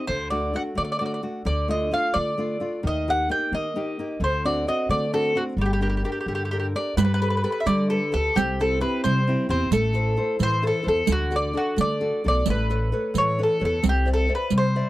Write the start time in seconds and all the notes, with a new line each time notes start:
0.07 D2 D3 C5
0.30 A3 D4 F#4 D5
0.54 A3 D4 F#4 F#5
0.75 D3 A3 D5
0.85 D5
0.92 D5
0.99 A3 D4 F#4 D5
1.06 D5
1.14 D5
1.23 A3 D4 F#4
1.45 D2 D3 D5
1.68 A3 D4 F4 D#5
1.91 A3 D4 F4 F5
2.14 D3 A3 D5
2.38 A3 D4 F4
2.60 A3 D4 F4
2.83 D#2 D#3
2.87 D#5
3.08 A#3 D#4 G4 F#5
3.29 A#3 D#4 G4 G5
3.52 D#3 A#3 D#5
3.76 A#3 D#4 G4
3.99 A#3 D#4 G4
4.20 D2 D3 C5
4.45 C4 D4 F#4 D5
4.67 C4 D4 F#4 D#5
4.89 D3 A3 D5
5.13 C4 D4 F#4 A4
5.35 C4 D4 F#4
5.57 G1 G3
5.61 G4
5.66 G4
5.73 G4
5.81 D4 G4 A#4
5.90 G4
5.97 G4
6.04 D4 G4 A#4
6.12 G4
6.21 G4
6.26 G2 D3 G4
6.35 G4
6.45 G4
6.51 D4 G4 A#4
6.60 G4
6.75 D4 G4 A#4 D5
6.97 G2 G3 B4, riq
7.05 B4
7.14 B4
7.21 G4 A4 B4, riq
7.30 B4
7.37 B4
7.43 G4 A4 B4
7.52 B4
7.60 E5
7.66 D3 G3 D5, riq
7.90 G4 A4 B4
8.12 D2 G4 A4 B4
8.35 C2 C3 G4, riq
8.60 C4 E4 G4 A4, riq
8.80 C4 E4 G4 B4
9.04 C3 G3 C5, riq
9.28 C4 E4 G4
9.49 E2 C4 E4 G4 C5
9.71 A1 A3 A4, riq
9.93 E4 A4 C5, riq
10.17 E4 A4 C5
10.39 A2 E3 C5, riq
10.63 E4 A4 C5
10.67 A4
10.83 E4 A4 C5
10.87 E2 A4
11.06 D2 D3, riq
11.12 F#4
11.31 D4 F#4 A4, riq
11.36 D5
11.53 D4 F#4 A4
11.76 D3 A3, riq
11.81 D5
12.01 D4 F#4 A4
12.24 B1 D4 F#4 A4 D5
12.46 A1 A3, riq
12.50 B4
12.70 A4 B4 C#5, riq
12.92 A4 B4 C#5
13.14 A2 E3, riq
13.18 C#5
13.38 A4 B4 C#5
13.43 A4
13.60 E2 A4 B4 C#5
13.65 A4
13.83 C2 C4, riq
13.89 G4
14.06 C5 D5 E5, riq
14.14 A4
14.28 C5 D5 E5
14.35 B4
14.50 C3 G3, riq
14.58 C5
14.76 C5 D5 E5